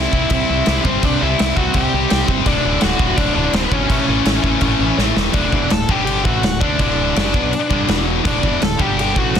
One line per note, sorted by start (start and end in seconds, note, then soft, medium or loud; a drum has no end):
0.00 0.13 C3 medium
0.00 0.14 C3 loud
0.00 0.14 G3 loud
0.00 0.14 G3 medium
0.00 0.11 C4 loud
0.00 0.14 C4 loud
0.00 0.29 E4 medium
0.00 0.31 E5 loud
0.13 0.25 C2 medium
0.13 0.32 C3 medium
0.13 0.33 G3 medium
0.13 0.33 C4 loud
0.13 kick medium
0.30 0.42 C2 medium
0.30 0.50 C3 loud
0.30 0.80 E4 medium
0.30 0.87 E5 loud
0.30 kick loud
0.30 crash medium
0.34 0.50 G3 loud
0.34 0.50 C4 loud
0.50 0.61 C2 loud
0.50 0.67 C3 medium
0.50 0.67 G3 medium
0.50 0.68 C4 medium
0.66 0.79 C2 medium
0.66 0.85 C3 medium
0.66 0.86 G3 medium
0.66 0.86 C4 loud
0.66 snare loud
0.66 crash medium
0.84 0.97 G1 loud
0.84 1.02 C3 medium
0.84 1.03 G3 medium
0.84 1.01 C4 medium
0.84 1.04 C4 loud
0.84 1.05 C5 loud
0.84 kick loud
1.03 1.15 C2 loud
1.03 1.19 C3 medium
1.03 1.19 G3 loud
1.03 1.21 C4 loud
1.03 1.20 D4 medium
1.03 1.22 D5 medium
1.03 kick loud
1.03 crash medium
1.20 1.34 C2 loud
1.20 1.38 C3 medium
1.20 1.39 G3 loud
1.20 1.39 C4 loud
1.20 1.54 E4 medium
1.20 1.56 E5 loud
1.39 1.51 C2 medium
1.39 1.56 C3 medium
1.39 1.57 G3 medium
1.39 1.57 C4 loud
1.39 snare loud
1.39 crash medium
1.57 1.69 C2 medium
1.57 1.73 C3 medium
1.57 1.74 G3 medium
1.57 1.75 C4 medium
1.57 1.74 F#4 medium
1.57 1.75 F#5 loud
1.57 kick medium
1.74 1.86 C2 loud
1.74 1.92 C3 medium
1.74 1.92 G3 loud
1.74 1.93 C4 loud
1.74 2.25 G4 medium
1.74 2.25 G5 loud
1.74 kick loud
1.74 crash medium
1.94 2.05 C2 loud
1.94 2.09 C3 medium
1.94 2.09 G3 medium
1.94 2.10 C4 medium
2.10 2.23 C2 loud
2.10 2.27 C3 medium
2.10 2.28 G3 medium
2.10 2.29 C4 loud
2.10 snare loud
2.10 crash medium
2.28 2.40 G1 loud
2.28 2.45 C3 medium
2.28 2.45 G3 loud
2.28 2.46 C4 loud
2.28 kick loud
2.46 2.58 D1 loud
2.46 2.63 D2 loud
2.46 2.64 A2 medium
2.46 2.64 D3 loud
2.46 2.80 D4 medium
2.46 2.80 D5 medium
2.46 kick loud
2.46 crash medium
2.64 2.76 D1 loud
2.64 2.79 D2 medium
2.64 2.80 A2 loud
2.64 2.80 D3 loud
2.80 2.94 D1 loud
2.80 2.97 D2 medium
2.80 2.98 A2 medium
2.80 2.99 D3 loud
2.80 3.17 F#4 medium
2.80 3.19 F#5 loud
2.80 snare loud
2.80 crash medium
2.98 3.12 D1 medium
2.98 3.16 D2 medium
2.98 3.16 A2 medium
2.98 3.17 D3 medium
2.98 kick medium
3.02 3.51 D2 medium
3.17 3.30 D1 loud
3.17 3.34 D2 loud
3.17 3.35 A2 loud
3.17 3.35 D3 loud
3.17 3.33 D4 medium
3.17 3.33 D5 loud
3.17 kick loud
3.17 crash medium
3.34 3.47 D1 medium
3.34 3.53 D2 medium
3.34 3.53 A2 medium
3.34 3.53 D3 medium
3.34 3.52 D4 medium
3.34 3.55 D5 medium
3.53 3.65 D1 loud
3.53 3.71 D2 medium
3.53 3.72 A2 medium
3.53 3.72 D3 loud
3.53 3.65 C4 medium
3.53 3.65 C5 medium
3.53 snare loud
3.53 crash medium
3.65 3.73 B4 medium
3.72 3.84 G#1 medium
3.72 3.89 D2 medium
3.72 3.89 A2 medium
3.72 3.90 D3 medium
3.72 4.96 C#4 medium
3.72 4.99 C#5 medium
3.72 kick loud
3.90 4.02 A1 medium
3.90 4.08 A2 loud
3.90 4.09 E3 loud
3.90 4.08 A3 medium
3.90 kick loud
3.90 crash medium
4.08 4.20 A1 loud
4.08 4.25 A2 medium
4.08 4.26 E3 loud
4.08 4.26 A3 loud
4.25 4.38 A1 medium
4.25 4.43 A2 medium
4.25 4.44 E3 loud
4.25 4.45 A3 medium
4.25 snare loud
4.25 crash medium
4.44 4.56 A1 medium
4.44 4.60 A2 medium
4.44 4.61 E3 medium
4.44 4.61 A3 loud
4.44 kick medium
4.61 4.74 A1 loud
4.61 4.79 A2 medium
4.61 4.80 E3 loud
4.61 4.80 A3 loud
4.61 kick loud
4.61 crash medium
4.79 4.91 A1 loud
4.79 4.97 A2 medium
4.79 4.98 E3 medium
4.79 4.98 A3 medium
4.98 5.10 A1 medium
4.98 5.15 A2 medium
4.98 5.15 E3 medium
4.98 5.16 A3 loud
4.98 snare medium
5.16 5.28 E1 loud
5.16 5.33 A2 medium
5.16 5.33 E3 loud
5.16 5.34 A3 medium
5.16 snare loud
5.33 5.51 D1 medium
5.33 5.52 D2 loud
5.33 5.52 A2 loud
5.33 5.52 D3 loud
5.33 5.68 D4 medium
5.33 5.71 D5 medium
5.33 kick loud
5.33 crash medium
5.52 5.70 E1 loud
5.52 5.70 E2 medium
5.52 5.71 B2 loud
5.52 5.71 E3 loud
5.52 kick loud
5.70 5.88 D1 medium
5.70 5.88 D2 medium
5.70 5.89 A2 medium
5.70 5.88 A4 medium
5.70 5.91 A5 loud
5.70 snare loud
5.70 crash medium
5.88 6.23 G1 medium
5.88 6.24 G2 medium
5.88 6.25 D3 loud
5.88 6.25 G3 loud
5.88 6.04 G4 medium
5.88 6.04 G5 medium
5.88 kick loud
6.05 6.23 G4 medium
6.05 6.23 G5 medium
6.05 crash medium
6.24 6.42 A1 medium
6.24 6.43 A2 medium
6.24 6.43 E3 medium
6.24 6.43 A3 loud
6.24 6.58 F#4 medium
6.24 6.59 F#5 loud
6.24 kick loud
6.43 6.60 D1 medium
6.43 6.58 D2 medium
6.43 6.58 A2 medium
6.43 snare loud
6.43 crash medium
6.60 6.78 D2 loud
6.60 6.79 D3 loud
6.60 6.79 A3 loud
6.60 6.78 D4 medium
6.60 6.79 D4 loud
6.60 6.79 D5 medium
6.60 kick loud
6.79 7.13 D1 loud
6.79 7.15 D2 medium
6.79 7.15 A2 loud
6.79 7.16 D3 loud
6.79 8.03 D4 medium
6.79 8.04 D5 medium
6.79 kick loud
6.79 crash medium
7.15 7.33 F#1 medium
7.15 7.33 F#2 medium
7.15 7.33 C#3 loud
7.15 7.32 F#3 loud
7.15 snare loud
7.15 crash medium
7.33 7.51 B1 medium
7.33 7.51 B2 loud
7.33 7.51 F#3 loud
7.33 7.52 B3 loud
7.33 kick loud
7.53 crash medium
7.70 7.87 G1 loud
7.70 7.86 G2 medium
7.70 7.87 D3 loud
7.70 7.87 G3 loud
7.70 kick loud
7.87 8.22 E1 loud
7.87 8.22 E2 medium
7.87 8.23 B2 loud
7.87 8.24 E3 loud
7.87 snare loud
7.87 crash medium
8.23 8.42 D1 loud
8.23 8.41 D2 loud
8.23 8.42 A2 loud
8.23 8.42 D3 loud
8.23 8.59 D4 medium
8.23 kick loud
8.23 crash medium
8.27 8.60 D5 medium
8.42 8.60 E1 loud
8.42 8.59 E2 loud
8.42 8.59 B2 medium
8.42 8.60 E3 loud
8.42 kick loud
8.59 8.78 D1 medium
8.59 8.75 D2 medium
8.59 8.75 A2 medium
8.59 8.79 A4 medium
8.59 8.81 A5 loud
8.59 snare loud
8.59 crash medium
8.79 9.13 G1 medium
8.79 9.15 G2 loud
8.79 9.15 D3 medium
8.79 9.15 G3 loud
8.79 8.96 G4 medium
8.79 8.99 G5 loud
8.79 kick loud
8.99 9.15 G4 medium
8.99 9.18 G5 loud
8.99 crash medium
9.15 9.33 A1 loud
9.15 9.33 A2 loud
9.15 9.34 E3 loud
9.15 9.34 A3 loud
9.15 9.40 F#4 medium
9.15 9.40 F#5 loud
9.15 kick loud
9.35 9.40 D1 medium
9.35 9.40 D2 medium
9.35 9.40 A2 medium
9.35 snare loud
9.35 crash medium